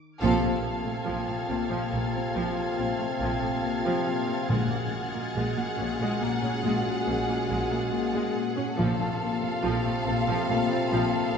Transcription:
0.00 0.25 D#3 soft
0.20 0.41 A#1 medium
0.20 0.64 A#2 soft
0.20 0.42 A#2 medium
0.20 4.45 C3 medium
0.20 0.41 F3 medium
0.20 4.46 C4 medium
0.20 4.46 F4 medium
0.20 4.46 A4 medium
0.20 4.46 F5 medium
0.20 8.31 F6 soft
0.20 6.60 G#6 soft
0.43 0.51 A#2 soft
0.43 0.51 A3 soft
0.65 1.07 A#2 soft
0.85 0.93 A#2 soft
0.85 0.93 A3 soft
1.05 1.16 A#1 soft
1.05 1.14 A#2 soft
1.05 1.49 A#2 soft
1.05 1.26 F3 soft
1.05 8.32 A6 soft
1.28 1.36 A#2 soft
1.28 1.36 A3 soft
1.49 1.57 A#1 soft
1.49 2.36 A#2 medium
1.49 1.58 A#2 soft
1.49 1.57 C4 soft
1.69 1.79 A#2 soft
1.69 1.90 F3 soft
1.92 2.01 A#1 soft
1.92 2.01 A#2 soft
1.92 2.00 A3 soft
1.92 5.83 A#3 soft
2.14 2.22 A#2 soft
2.14 2.23 C4 soft
2.35 2.44 A#1 soft
2.35 2.44 A#2 soft
2.35 2.76 A#2 soft
2.35 2.56 F3 medium
2.78 2.86 A#1 soft
2.78 3.20 A#2 soft
2.78 2.87 A#2 soft
2.78 2.86 C4 soft
2.99 3.07 A#2 soft
2.99 3.07 A3 soft
3.20 3.28 A#1 soft
3.20 3.28 A#2 medium
3.20 3.63 A#2 soft
3.20 3.42 F3 soft
3.42 3.51 A#2 soft
3.42 3.50 A3 soft
3.64 4.05 A#2 medium
3.85 3.93 A#2 soft
3.85 4.05 F3 soft
4.07 4.49 A#2 soft
4.27 4.36 A#2 soft
4.27 4.35 C4 soft
4.49 4.58 A#1 soft
4.49 4.57 A#2 medium
4.49 5.74 A#2 medium
4.49 4.91 A#2 medium
4.49 8.62 A#2 medium
4.49 4.69 G#3 medium
4.49 8.62 G#3 soft
4.49 8.62 C#4 medium
4.49 8.62 F#4 medium
4.49 8.74 G#4 soft
4.49 8.79 F#5 soft
4.70 4.79 A#2 soft
4.70 4.78 A#3 soft
4.93 5.35 A#2 soft
5.13 5.22 A#2 soft
5.13 5.21 A#3 soft
5.35 5.43 A#1 medium
5.35 5.43 A#2 medium
5.35 5.78 A#2 soft
5.35 5.56 G#3 medium
5.56 5.64 A#2 soft
5.56 5.65 A#3 soft
5.77 5.87 A#1 soft
5.77 5.85 A#2 soft
5.77 6.63 A#2 medium
5.77 5.87 C#4 soft
5.99 6.07 A#2 medium
5.99 6.21 G#3 medium
6.21 6.30 A#1 soft
6.21 6.29 A#2 soft
6.21 6.29 A#3 soft
6.21 8.82 A#3 soft
6.42 6.50 A#2 soft
6.42 6.50 C#4 soft
6.63 6.71 A#1 medium
6.63 6.72 A#2 medium
6.63 7.06 A#2 medium
6.63 6.84 G#3 medium
7.07 7.15 A#1 soft
7.07 7.49 A#2 soft
7.07 7.15 A#2 soft
7.07 7.16 C#4 soft
7.28 7.36 A#2 soft
7.28 7.37 A#3 soft
7.49 7.57 A#1 medium
7.49 7.57 A#2 medium
7.49 7.90 A#2 soft
7.49 7.70 G#3 medium
7.71 7.79 A#2 soft
7.71 7.79 A#3 soft
7.91 8.34 A#2 medium
8.13 8.22 A#2 medium
8.13 8.33 G#3 medium
8.35 8.77 A#2 soft
8.57 8.65 A#2 soft
8.57 8.65 C#4 soft
8.77 8.86 A#1 medium
8.77 9.20 A#2 medium
8.77 10.03 A#2 medium
8.77 8.87 A#2 medium
8.77 11.38 C3 medium
8.77 8.98 F3 medium
8.77 11.38 C4 medium
8.77 11.38 F4 medium
8.77 11.38 A4 medium
8.77 11.38 F5 medium
8.77 11.38 C6 soft
8.77 11.38 A6 soft
8.99 9.08 A#2 soft
8.99 9.07 A3 soft
9.21 9.64 A#2 soft
9.40 9.51 A#2 soft
9.40 9.48 A3 soft
9.62 9.72 A#1 medium
9.62 9.72 A#2 medium
9.62 10.07 A#2 soft
9.62 9.83 F3 medium
9.62 11.38 B5 soft
9.84 9.94 A#2 soft
9.84 9.92 A3 soft
10.05 10.15 A#1 soft
10.05 10.14 A#2 soft
10.05 10.93 A#2 medium
10.05 10.13 C4 soft
10.27 10.36 A#2 medium
10.27 10.48 F3 medium
10.49 10.58 A#1 soft
10.49 10.57 A#2 soft
10.49 10.57 A3 soft
10.49 11.38 A#3 soft
10.71 10.80 A#2 soft
10.71 10.79 C4 soft
10.91 11.01 A#1 medium
10.91 11.01 A#2 medium
10.91 11.36 A#2 medium
10.91 11.12 F3 medium
11.34 11.38 C4 soft

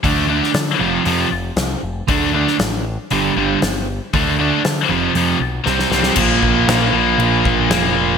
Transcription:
0.03 0.40 D2 medium
0.03 0.24 D3 medium
0.03 0.25 A3 medium
0.03 0.25 D4 medium
0.03 kick medium
0.03 open hi-hat soft
0.28 0.49 D3 medium
0.28 0.50 A3 medium
0.28 0.50 D4 medium
0.43 snare soft
0.54 0.73 D3 medium
0.54 snare loud
0.54 open hi-hat soft
0.79 0.98 F1 medium
0.79 1.02 F2 medium
0.79 1.02 C3 medium
0.79 1.02 F3 loud
1.06 1.24 F2 medium
1.06 1.27 F2 medium
1.06 1.27 C3 medium
1.06 1.27 F3 medium
1.06 open hi-hat soft
1.32 1.50 F1 medium
1.56 1.75 C2 medium
1.56 snare loud
1.56 open hi-hat soft
1.83 2.01 F1 medium
2.08 2.45 D2 medium
2.08 2.29 D3 medium
2.08 2.29 A3 medium
2.08 2.30 D4 loud
2.08 kick medium
2.08 open hi-hat soft
2.32 2.54 D3 medium
2.32 2.54 A3 medium
2.32 2.55 D4 medium
2.47 snare soft
2.60 2.96 A1 medium
2.60 snare loud
2.60 open hi-hat soft
3.10 3.30 G1 medium
3.10 3.32 G2 medium
3.10 3.32 D3 medium
3.10 3.32 G3 medium
3.10 open hi-hat soft
3.36 3.55 G1 medium
3.36 3.57 G2 medium
3.36 3.57 D3 loud
3.36 3.58 G3 medium
3.62 3.99 G1 medium
3.62 snare medium
3.62 open hi-hat soft
4.13 4.50 D2 medium
4.13 4.34 D3 medium
4.13 4.35 A3 medium
4.13 4.35 D4 medium
4.13 kick loud
4.13 open hi-hat soft
4.39 4.60 D3 medium
4.39 4.60 A3 medium
4.39 4.61 D4 medium
4.65 4.83 D3 medium
4.65 snare loud
4.65 open hi-hat soft
4.90 5.08 F1 medium
4.90 5.11 F2 medium
4.90 5.12 C3 loud
4.90 5.12 F3 loud
5.15 5.34 F2 medium
5.15 5.37 F2 medium
5.15 5.37 C3 medium
5.15 5.37 F3 medium
5.15 open hi-hat soft
5.41 5.59 B1 medium
5.64 5.85 C2 medium
5.64 5.86 C3 medium
5.64 5.86 G3 medium
5.64 5.87 C4 loud
5.64 snare soft
5.79 snare medium
5.90 6.10 C2 medium
5.90 6.12 C3 medium
5.90 6.12 G3 medium
5.90 6.12 C4 medium
5.90 snare medium
6.03 snare medium
6.15 6.40 A#1 medium
6.15 6.95 A#2 medium
6.15 6.93 F3 medium
6.15 kick loud
6.15 crash loud
6.15 crash medium
6.19 6.91 A#3 loud
6.43 6.66 A#1 medium
6.43 kick medium
6.68 6.91 A#1 medium
6.68 snare loud
6.68 crash medium
6.92 7.16 A#1 medium
6.92 7.67 A#2 medium
6.92 7.69 F3 medium
6.92 7.68 A#3 medium
7.18 7.41 A#1 medium
7.18 crash medium
7.45 7.68 A#1 medium
7.45 kick medium
7.69 8.15 F1 medium
7.69 8.18 A#2 medium
7.69 8.18 F3 medium
7.69 8.18 A#3 medium
7.69 snare loud
7.69 crash medium

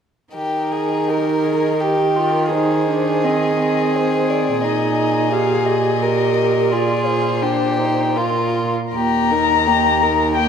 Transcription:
0.33 4.58 D#3 soft
0.33 1.76 D#4 soft
0.33 0.73 G4 soft
0.33 1.09 A#4 soft
0.72 1.11 G#4 soft
1.07 1.46 G4 soft
1.07 1.82 A#4 soft
1.44 1.80 G#4 soft
1.81 2.53 G4 soft
1.81 2.17 G4 soft
1.81 2.53 A#4 soft
2.16 2.52 F4 soft
2.52 2.88 D#4 soft
2.52 6.04 G#4 soft
2.52 3.26 C5 soft
2.89 3.25 D4 soft
3.24 3.59 C4 soft
3.24 3.97 D#5 soft
3.59 4.65 C4 soft
3.96 4.31 C5 soft
4.30 4.63 D5 soft
4.63 8.69 A#2 soft
4.63 5.32 D#4 soft
4.63 5.34 D#5 soft
5.31 6.01 G4 soft
5.31 5.67 F5 soft
5.66 6.73 D#5 soft
6.01 6.73 G4 soft
6.01 6.36 A#4 soft
6.37 6.73 A#4 soft
6.71 7.43 F4 soft
6.71 7.44 G#4 soft
6.71 7.07 D5 soft
7.05 8.17 C5 soft
7.42 7.80 D4 soft
7.42 8.19 G4 soft
7.78 8.18 D#4 soft
8.15 8.74 F4 soft
8.15 8.73 A#4 soft
8.93 10.48 D#2 soft
8.93 9.33 A#3 soft
8.93 9.33 G4 soft
8.93 10.32 A#5 medium
9.31 9.69 D#4 soft
9.31 9.68 A#4 soft
9.67 10.04 A#3 soft
9.67 10.03 G4 soft
10.02 10.37 D#4 soft
10.02 10.36 A#4 soft
10.36 10.48 A#3 soft
10.36 10.48 G4 soft
10.36 10.48 G5 soft

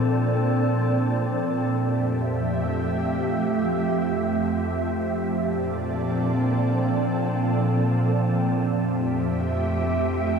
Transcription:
0.00 1.69 A#2 medium
0.00 1.69 F3 medium
0.00 1.69 A#3 medium
0.00 1.69 C4 medium
0.00 1.69 D4 medium
0.00 1.69 A4 medium
0.00 1.69 C5 medium
0.00 1.69 D5 medium
0.00 1.69 A5 medium
1.73 5.15 F2 medium
1.73 10.39 F3 medium
1.73 5.15 A3 medium
1.73 5.15 F4 medium
1.73 5.15 G4 medium
1.73 5.15 E5 medium
1.73 5.15 G5 medium
5.18 8.60 A#2 medium
5.18 8.60 A#3 medium
5.18 8.60 C4 medium
5.18 8.60 D4 medium
5.18 8.60 A4 medium
5.18 8.60 C5 medium
5.18 8.60 D5 medium
5.18 8.60 A5 medium
8.63 10.39 F2 medium
8.63 10.39 A3 medium
8.63 10.39 F4 medium
8.63 10.39 G4 medium
8.63 10.39 E5 medium
8.63 10.39 G5 medium

